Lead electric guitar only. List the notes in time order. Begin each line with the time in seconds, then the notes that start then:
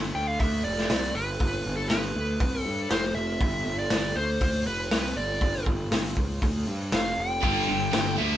0.15 G5
0.27 F5
0.39 E5
0.64 D5
1.15 B4
1.77 A4
1.89 B4
2.62 A4
2.90 C5
3.15 E5
3.79 D5
4.16 C5
4.67 B4
5.17 D5
6.94 F5
7.20 G5
8.18 E5